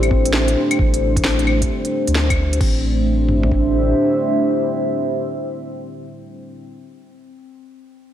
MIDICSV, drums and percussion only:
0, 0, Header, 1, 2, 480
1, 0, Start_track
1, 0, Key_signature, 0, "minor"
1, 0, Tempo, 454545
1, 833, Time_signature, 4, 2, 24, 8
1, 8590, End_track
2, 0, Start_track
2, 0, Title_t, "Drums"
2, 31, Note_on_c, 9, 42, 29
2, 31, Note_on_c, 9, 75, 34
2, 116, Note_on_c, 9, 36, 102
2, 136, Note_off_c, 9, 42, 0
2, 136, Note_off_c, 9, 75, 0
2, 221, Note_off_c, 9, 36, 0
2, 269, Note_on_c, 9, 42, 52
2, 352, Note_on_c, 9, 38, 104
2, 375, Note_off_c, 9, 42, 0
2, 458, Note_off_c, 9, 38, 0
2, 508, Note_on_c, 9, 42, 42
2, 614, Note_off_c, 9, 42, 0
2, 749, Note_on_c, 9, 42, 51
2, 749, Note_on_c, 9, 75, 58
2, 834, Note_on_c, 9, 36, 117
2, 855, Note_off_c, 9, 42, 0
2, 855, Note_off_c, 9, 75, 0
2, 940, Note_off_c, 9, 36, 0
2, 990, Note_on_c, 9, 42, 39
2, 1096, Note_off_c, 9, 42, 0
2, 1230, Note_on_c, 9, 36, 98
2, 1233, Note_on_c, 9, 42, 51
2, 1315, Note_on_c, 9, 38, 98
2, 1336, Note_off_c, 9, 36, 0
2, 1339, Note_off_c, 9, 42, 0
2, 1420, Note_off_c, 9, 38, 0
2, 1470, Note_on_c, 9, 42, 28
2, 1553, Note_on_c, 9, 75, 52
2, 1575, Note_off_c, 9, 42, 0
2, 1659, Note_off_c, 9, 75, 0
2, 1709, Note_on_c, 9, 42, 48
2, 1710, Note_on_c, 9, 36, 55
2, 1815, Note_off_c, 9, 36, 0
2, 1815, Note_off_c, 9, 42, 0
2, 1951, Note_on_c, 9, 42, 28
2, 2057, Note_off_c, 9, 42, 0
2, 2191, Note_on_c, 9, 42, 47
2, 2273, Note_on_c, 9, 38, 97
2, 2296, Note_off_c, 9, 42, 0
2, 2379, Note_off_c, 9, 38, 0
2, 2429, Note_on_c, 9, 36, 97
2, 2432, Note_on_c, 9, 42, 40
2, 2432, Note_on_c, 9, 75, 58
2, 2535, Note_off_c, 9, 36, 0
2, 2537, Note_off_c, 9, 42, 0
2, 2537, Note_off_c, 9, 75, 0
2, 2672, Note_on_c, 9, 42, 49
2, 2752, Note_on_c, 9, 36, 104
2, 2753, Note_on_c, 9, 49, 79
2, 2777, Note_off_c, 9, 42, 0
2, 2858, Note_off_c, 9, 36, 0
2, 2859, Note_off_c, 9, 49, 0
2, 3469, Note_on_c, 9, 47, 55
2, 3575, Note_off_c, 9, 47, 0
2, 3626, Note_on_c, 9, 43, 69
2, 3712, Note_on_c, 9, 36, 80
2, 3732, Note_off_c, 9, 43, 0
2, 3818, Note_off_c, 9, 36, 0
2, 8590, End_track
0, 0, End_of_file